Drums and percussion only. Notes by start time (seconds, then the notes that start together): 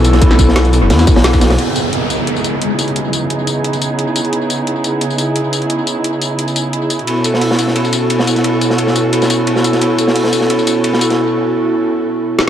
0.04 closed hi-hat, ride, tambourine
0.13 snare, closed hi-hat
0.22 kick, closed hi-hat, ride
0.31 snare
0.39 kick, closed hi-hat, ride, tambourine
0.48 snare
0.56 snare, closed hi-hat, ride
0.64 snare, closed hi-hat
0.73 open hi-hat, ride, tambourine
0.90 snare, closed hi-hat, open hi-hat
0.99 snare, closed hi-hat, tambourine
1.07 kick, closed hi-hat, ride, tambourine
1.16 snare, open hi-hat
1.24 snare, closed hi-hat
1.33 kick, snare, ride, tambourine
1.41 snare, closed hi-hat, open hi-hat, tambourine
1.50 snare, closed hi-hat, open hi-hat
1.58 closed hi-hat
1.76 closed hi-hat, tambourine
1.93 closed hi-hat
2.10 closed hi-hat, tambourine
2.27 closed hi-hat
2.36 tambourine
2.44 closed hi-hat, tambourine
2.62 closed hi-hat
2.79 closed hi-hat, tambourine
2.88 closed hi-hat
2.96 closed hi-hat
3.13 closed hi-hat, tambourine
3.30 closed hi-hat
3.47 closed hi-hat, tambourine
3.64 closed hi-hat
3.73 closed hi-hat, tambourine
3.82 closed hi-hat, tambourine
3.99 closed hi-hat
4.16 closed hi-hat, tambourine
4.25 closed hi-hat
4.33 closed hi-hat
4.50 closed hi-hat, tambourine
4.67 closed hi-hat
4.84 closed hi-hat, tambourine
5.01 closed hi-hat
5.10 tambourine
5.18 closed hi-hat, tambourine
5.36 closed hi-hat
5.53 closed hi-hat, tambourine
5.62 closed hi-hat
5.70 closed hi-hat
5.87 closed hi-hat, tambourine
6.04 closed hi-hat
6.22 closed hi-hat, tambourine
6.39 closed hi-hat
6.48 closed hi-hat, tambourine
6.56 closed hi-hat, tambourine
6.73 closed hi-hat
6.90 closed hi-hat, tambourine
6.99 closed hi-hat
7.07 closed hi-hat, ride
7.24 closed hi-hat, ride, tambourine
7.34 snare
7.41 closed hi-hat, open hi-hat
7.51 snare
7.59 closed hi-hat, ride, tambourine
7.68 snare
7.76 closed hi-hat, ride
7.84 ride, tambourine
7.93 closed hi-hat, ride, tambourine
8.10 closed hi-hat, ride
8.19 snare
8.27 closed hi-hat, ride, tambourine
8.35 snare, closed hi-hat
8.44 closed hi-hat, ride
8.61 closed hi-hat, ride, tambourine
8.70 snare
8.78 closed hi-hat, ride
8.87 snare
8.95 closed hi-hat, ride, tambourine
9.13 closed hi-hat, ride
9.22 snare, closed hi-hat, tambourine
9.30 closed hi-hat, ride, tambourine
9.47 closed hi-hat, ride
9.56 snare
9.64 closed hi-hat, ride, tambourine
9.73 snare, closed hi-hat
9.81 closed hi-hat, ride
9.98 closed hi-hat, ride, tambourine
10.07 snare
10.16 closed hi-hat, open hi-hat
10.24 snare
10.33 closed hi-hat, ride, tambourine
10.41 snare
10.50 closed hi-hat, ride
10.59 ride, tambourine
10.67 closed hi-hat, ride, tambourine
10.84 closed hi-hat, ride
10.93 snare
11.01 closed hi-hat, ride, tambourine
11.10 snare, closed hi-hat
12.39 snare